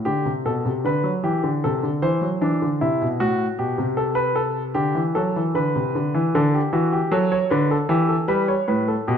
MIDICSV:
0, 0, Header, 1, 2, 480
1, 0, Start_track
1, 0, Key_signature, 1, "major"
1, 0, Tempo, 785340
1, 37, Time_signature, 4, 2, 24, 8
1, 5610, End_track
2, 0, Start_track
2, 0, Title_t, "Grand piano"
2, 0, Program_c, 0, 0
2, 31, Note_on_c, 0, 67, 84
2, 36, Note_on_c, 0, 50, 66
2, 155, Note_off_c, 0, 50, 0
2, 155, Note_on_c, 0, 48, 61
2, 184, Note_off_c, 0, 67, 0
2, 275, Note_off_c, 0, 48, 0
2, 277, Note_on_c, 0, 47, 64
2, 279, Note_on_c, 0, 69, 77
2, 396, Note_off_c, 0, 47, 0
2, 398, Note_on_c, 0, 48, 63
2, 430, Note_off_c, 0, 69, 0
2, 516, Note_on_c, 0, 50, 65
2, 517, Note_off_c, 0, 48, 0
2, 523, Note_on_c, 0, 71, 80
2, 633, Note_on_c, 0, 54, 69
2, 636, Note_off_c, 0, 50, 0
2, 672, Note_off_c, 0, 71, 0
2, 755, Note_off_c, 0, 54, 0
2, 755, Note_on_c, 0, 52, 68
2, 757, Note_on_c, 0, 67, 79
2, 876, Note_off_c, 0, 52, 0
2, 877, Note_on_c, 0, 50, 71
2, 908, Note_off_c, 0, 67, 0
2, 997, Note_off_c, 0, 50, 0
2, 1002, Note_on_c, 0, 69, 81
2, 1005, Note_on_c, 0, 48, 71
2, 1119, Note_on_c, 0, 50, 66
2, 1121, Note_off_c, 0, 48, 0
2, 1152, Note_off_c, 0, 69, 0
2, 1237, Note_on_c, 0, 52, 72
2, 1237, Note_on_c, 0, 72, 88
2, 1239, Note_off_c, 0, 50, 0
2, 1353, Note_on_c, 0, 54, 65
2, 1357, Note_off_c, 0, 52, 0
2, 1388, Note_off_c, 0, 72, 0
2, 1475, Note_off_c, 0, 54, 0
2, 1475, Note_on_c, 0, 52, 69
2, 1477, Note_on_c, 0, 62, 76
2, 1596, Note_off_c, 0, 52, 0
2, 1602, Note_on_c, 0, 50, 65
2, 1628, Note_off_c, 0, 62, 0
2, 1719, Note_on_c, 0, 48, 64
2, 1719, Note_on_c, 0, 64, 76
2, 1720, Note_off_c, 0, 50, 0
2, 1838, Note_off_c, 0, 48, 0
2, 1843, Note_on_c, 0, 47, 69
2, 1870, Note_off_c, 0, 64, 0
2, 1956, Note_on_c, 0, 45, 76
2, 1957, Note_on_c, 0, 66, 90
2, 1960, Note_off_c, 0, 47, 0
2, 2107, Note_off_c, 0, 45, 0
2, 2108, Note_off_c, 0, 66, 0
2, 2192, Note_on_c, 0, 47, 59
2, 2192, Note_on_c, 0, 67, 77
2, 2310, Note_on_c, 0, 48, 71
2, 2315, Note_off_c, 0, 47, 0
2, 2344, Note_off_c, 0, 67, 0
2, 2426, Note_on_c, 0, 69, 80
2, 2537, Note_on_c, 0, 71, 90
2, 2551, Note_off_c, 0, 69, 0
2, 2661, Note_on_c, 0, 69, 82
2, 2667, Note_off_c, 0, 71, 0
2, 2817, Note_off_c, 0, 69, 0
2, 2899, Note_off_c, 0, 48, 0
2, 2900, Note_on_c, 0, 67, 85
2, 2902, Note_on_c, 0, 50, 73
2, 3025, Note_on_c, 0, 52, 67
2, 3029, Note_off_c, 0, 50, 0
2, 3056, Note_off_c, 0, 67, 0
2, 3148, Note_on_c, 0, 69, 86
2, 3151, Note_off_c, 0, 52, 0
2, 3154, Note_on_c, 0, 54, 71
2, 3276, Note_off_c, 0, 54, 0
2, 3277, Note_on_c, 0, 52, 70
2, 3302, Note_off_c, 0, 69, 0
2, 3390, Note_on_c, 0, 50, 70
2, 3393, Note_on_c, 0, 71, 80
2, 3397, Note_off_c, 0, 52, 0
2, 3513, Note_off_c, 0, 50, 0
2, 3517, Note_on_c, 0, 48, 68
2, 3637, Note_off_c, 0, 48, 0
2, 3638, Note_on_c, 0, 50, 69
2, 3756, Note_on_c, 0, 52, 77
2, 3757, Note_off_c, 0, 50, 0
2, 3863, Note_off_c, 0, 71, 0
2, 3875, Note_off_c, 0, 52, 0
2, 3881, Note_on_c, 0, 50, 98
2, 3881, Note_on_c, 0, 69, 82
2, 3998, Note_off_c, 0, 69, 0
2, 3999, Note_on_c, 0, 67, 71
2, 4029, Note_off_c, 0, 50, 0
2, 4112, Note_on_c, 0, 52, 85
2, 4112, Note_on_c, 0, 66, 71
2, 4116, Note_off_c, 0, 67, 0
2, 4232, Note_off_c, 0, 66, 0
2, 4233, Note_on_c, 0, 67, 76
2, 4263, Note_off_c, 0, 52, 0
2, 4349, Note_on_c, 0, 54, 94
2, 4352, Note_off_c, 0, 67, 0
2, 4352, Note_on_c, 0, 69, 78
2, 4471, Note_off_c, 0, 69, 0
2, 4473, Note_on_c, 0, 73, 80
2, 4500, Note_off_c, 0, 54, 0
2, 4587, Note_on_c, 0, 71, 74
2, 4591, Note_off_c, 0, 73, 0
2, 4591, Note_on_c, 0, 50, 96
2, 4708, Note_off_c, 0, 71, 0
2, 4712, Note_on_c, 0, 69, 75
2, 4741, Note_off_c, 0, 50, 0
2, 4822, Note_on_c, 0, 52, 94
2, 4822, Note_on_c, 0, 67, 75
2, 4831, Note_off_c, 0, 69, 0
2, 4943, Note_on_c, 0, 69, 67
2, 4945, Note_off_c, 0, 67, 0
2, 4975, Note_off_c, 0, 52, 0
2, 5061, Note_on_c, 0, 55, 96
2, 5062, Note_on_c, 0, 71, 81
2, 5065, Note_off_c, 0, 69, 0
2, 5184, Note_on_c, 0, 73, 72
2, 5185, Note_off_c, 0, 71, 0
2, 5214, Note_off_c, 0, 55, 0
2, 5304, Note_on_c, 0, 45, 85
2, 5306, Note_off_c, 0, 73, 0
2, 5306, Note_on_c, 0, 71, 75
2, 5427, Note_off_c, 0, 71, 0
2, 5428, Note_on_c, 0, 69, 66
2, 5456, Note_off_c, 0, 45, 0
2, 5546, Note_on_c, 0, 67, 69
2, 5548, Note_off_c, 0, 69, 0
2, 5549, Note_on_c, 0, 47, 88
2, 5610, Note_off_c, 0, 47, 0
2, 5610, Note_off_c, 0, 67, 0
2, 5610, End_track
0, 0, End_of_file